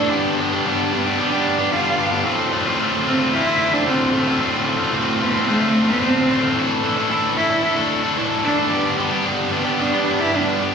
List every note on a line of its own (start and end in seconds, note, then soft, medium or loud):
0.00 0.10 D4 loud
0.00 0.10 D4 medium
0.10 0.64 G2 loud
0.10 0.64 D3 loud
0.10 0.37 G3 loud
0.10 0.38 B3 loud
0.10 0.40 D4 loud
0.10 0.40 G4 loud
0.39 0.52 G3 medium
0.39 0.53 B3 medium
0.39 0.52 D4 medium
0.39 0.51 G4 medium
0.52 0.65 G3 medium
0.52 0.65 B3 medium
0.52 0.66 D4 medium
0.52 0.66 G4 medium
0.65 1.19 G2 loud
0.65 1.19 D3 loud
0.65 0.91 G3 loud
0.65 0.92 B3 medium
0.65 0.93 D4 loud
0.65 0.93 G4 loud
0.92 1.06 G3 medium
0.92 1.17 B3 medium
0.92 1.06 B3 medium
0.92 1.06 D4 loud
0.92 1.05 G4 medium
1.06 1.17 G3 medium
1.06 1.18 B3 medium
1.06 1.19 D4 medium
1.06 1.20 G4 medium
1.19 1.32 G3 medium
1.19 1.32 B3 medium
1.19 1.74 D4 loud
1.19 1.32 D4 medium
1.19 1.30 G4 medium
1.32 1.59 G3 medium
1.32 1.59 B3 medium
1.32 1.59 D4 medium
1.32 1.57 G4 medium
1.58 1.71 G3 medium
1.58 1.72 B3 medium
1.58 1.73 D4 medium
1.58 1.72 G4 medium
1.72 2.23 G2 medium
1.72 2.24 D3 loud
1.72 1.96 G3 loud
1.72 1.97 B3 loud
1.72 1.98 D4 loud
1.72 2.13 F4 loud
1.72 1.98 G4 loud
1.98 2.13 G3 medium
1.98 2.12 B3 medium
1.98 2.12 D4 medium
1.98 2.10 G4 medium
2.12 2.25 G3 medium
2.12 2.25 B3 medium
2.12 2.25 D4 medium
2.12 2.24 G4 medium
2.24 2.78 D2 medium
2.24 2.78 A2 loud
2.24 2.51 D3 loud
2.24 2.52 A3 loud
2.24 2.52 C4 loud
2.24 2.53 F4 loud
2.51 2.68 D3 medium
2.51 2.67 A3 medium
2.51 2.66 C4 medium
2.51 2.66 F4 medium
2.66 2.79 D3 medium
2.66 2.79 A3 medium
2.66 2.80 C4 medium
2.66 2.79 F4 medium
2.78 3.38 D2 medium
2.78 3.33 A2 loud
2.78 3.05 D3 loud
2.78 3.06 A3 medium
2.78 3.06 C4 medium
2.78 3.07 F4 medium
3.06 3.21 D3 medium
3.06 3.20 A3 medium
3.06 3.19 C4 medium
3.06 3.32 C4 medium
3.06 3.18 F4 medium
3.19 3.32 D3 medium
3.19 3.33 A3 medium
3.19 3.33 C4 medium
3.19 3.33 F4 medium
3.33 3.47 D3 medium
3.33 3.46 A3 medium
3.33 3.46 C4 medium
3.33 3.75 E4 loud
3.33 3.45 F4 medium
3.46 3.74 D3 medium
3.46 3.74 A3 medium
3.46 3.73 C4 medium
3.46 3.72 F4 medium
3.73 3.86 D3 medium
3.73 3.86 A3 medium
3.73 3.86 C4 medium
3.73 3.90 D4 loud
3.73 3.87 F4 medium
3.86 4.39 D2 loud
3.86 4.40 A2 loud
3.86 4.12 D3 loud
3.86 4.13 A3 loud
3.86 4.13 C4 loud
3.86 4.29 C4 medium
3.86 4.14 F4 loud
4.14 4.28 D3 medium
4.14 4.28 A3 medium
4.14 4.27 C4 medium
4.14 4.26 F4 medium
4.27 4.40 D3 medium
4.27 4.41 A3 medium
4.27 4.40 C4 medium
4.27 4.41 F4 medium
4.40 4.91 D2 loud
4.40 4.91 A2 loud
4.40 4.65 D3 loud
4.40 4.66 A3 loud
4.40 4.66 C4 loud
4.40 4.67 F4 loud
4.66 4.80 D3 medium
4.66 4.81 A3 medium
4.66 4.79 C4 medium
4.66 4.78 F4 medium
4.79 4.92 D3 medium
4.79 4.93 A3 medium
4.79 4.92 C4 medium
4.79 4.92 F4 medium
4.92 5.48 D2 medium
4.92 5.48 A2 loud
4.92 5.19 D3 loud
4.92 5.20 A3 loud
4.92 5.20 C4 loud
4.92 5.20 F4 loud
5.20 5.34 D3 medium
5.20 5.34 A3 medium
5.20 5.47 B3 medium
5.20 5.33 C4 medium
5.20 5.33 F4 loud
5.34 5.47 D3 medium
5.34 5.47 A3 medium
5.34 5.48 C4 medium
5.34 5.49 F4 medium
5.47 5.62 D3 medium
5.47 5.93 A3 loud
5.47 5.61 A3 medium
5.47 5.60 C4 medium
5.47 5.59 F4 medium
5.60 5.88 D3 medium
5.60 5.88 A3 medium
5.60 5.87 C4 medium
5.60 5.86 F4 medium
5.88 6.00 D3 medium
5.88 6.01 A3 medium
5.88 6.07 B3 loud
5.88 6.01 C4 medium
5.88 6.01 F4 medium
6.01 6.54 D2 loud
6.01 6.54 A2 loud
6.01 6.27 D3 loud
6.01 6.28 A3 loud
6.01 6.29 C4 loud
6.01 6.29 F4 loud
6.05 6.45 C4 loud
6.28 6.44 D3 medium
6.28 6.43 A3 medium
6.28 6.43 C4 medium
6.28 6.42 F4 medium
6.43 6.56 D3 medium
6.43 6.56 A3 medium
6.43 6.56 C4 medium
6.43 6.55 F4 medium
6.57 7.08 A2 loud
6.57 7.09 E3 loud
6.57 6.83 A3 loud
6.57 6.84 D4 loud
6.57 6.84 E4 loud
6.57 6.84 A4 loud
6.84 6.98 A3 medium
6.84 6.98 D4 medium
6.84 6.97 E4 medium
6.84 6.96 A4 medium
6.97 7.09 A3 medium
6.97 7.11 D4 medium
6.97 7.10 E4 medium
6.97 7.10 A4 medium
7.09 7.64 A2 loud
7.09 7.64 E3 loud
7.09 7.36 A3 loud
7.09 7.37 D4 medium
7.09 7.36 E4 loud
7.09 7.37 A4 medium
7.36 7.51 A3 medium
7.36 7.51 D4 medium
7.36 7.62 E4 loud
7.36 7.49 E4 medium
7.36 7.49 A4 medium
7.50 7.60 A3 medium
7.50 7.62 D4 medium
7.50 7.62 E4 medium
7.50 7.62 A4 medium
7.61 7.77 A3 medium
7.61 7.77 D4 medium
7.61 7.75 E4 medium
7.61 7.74 A4 medium
7.76 8.03 A3 medium
7.76 8.04 D4 medium
7.76 8.03 E4 medium
7.76 8.01 A4 medium
8.02 8.16 A3 medium
8.02 8.18 D4 medium
8.02 8.17 E4 medium
8.02 8.17 A4 medium
8.17 8.69 A2 loud
8.17 8.69 E3 loud
8.17 8.43 A3 loud
8.17 8.44 D4 loud
8.17 8.44 E4 loud
8.17 8.45 A4 loud
8.44 8.59 A3 medium
8.44 8.59 D4 medium
8.44 8.70 D4 loud
8.44 8.57 E4 medium
8.44 8.57 A4 medium
8.58 8.70 A3 medium
8.58 8.70 D4 medium
8.58 8.70 E4 medium
8.58 8.70 A4 medium
8.70 9.23 G2 loud
8.70 9.24 D3 loud
8.70 8.96 G3 loud
8.70 8.97 B3 loud
8.70 8.97 D4 loud
8.70 8.98 G4 loud
8.97 9.12 G3 medium
8.97 9.11 B3 medium
8.97 9.11 D4 medium
8.97 9.10 G4 medium
9.11 9.24 G3 medium
9.11 9.24 B3 medium
9.11 9.25 D4 medium
9.11 9.25 G4 medium
9.25 9.79 G2 medium
9.25 9.79 D3 medium
9.25 9.50 G3 medium
9.25 9.51 B3 loud
9.25 9.52 D4 loud
9.25 9.52 G4 loud
9.51 9.66 G3 medium
9.51 9.64 B3 medium
9.51 9.82 B3 medium
9.51 9.64 D4 medium
9.51 9.64 G4 medium
9.65 9.77 G3 medium
9.65 9.78 B3 medium
9.65 9.78 D4 medium
9.65 9.79 G4 medium
9.79 9.93 G3 medium
9.79 9.92 B3 medium
9.79 9.92 D4 medium
9.79 10.23 D4 medium
9.79 9.91 G4 medium
9.93 10.20 G3 medium
9.93 10.20 B3 medium
9.93 10.19 D4 medium
9.93 10.18 G4 medium
10.20 10.32 G3 medium
10.20 10.33 B3 medium
10.20 10.33 D4 medium
10.20 10.37 E4 loud
10.20 10.34 G4 medium
10.32 10.75 G2 loud
10.32 10.75 D3 loud
10.32 10.59 G3 medium
10.32 10.60 B3 loud
10.32 10.61 D4 loud
10.32 10.75 D4 medium
10.32 10.62 G4 loud
10.60 10.72 G3 medium
10.60 10.72 B3 medium
10.60 10.71 D4 medium
10.60 10.71 G4 medium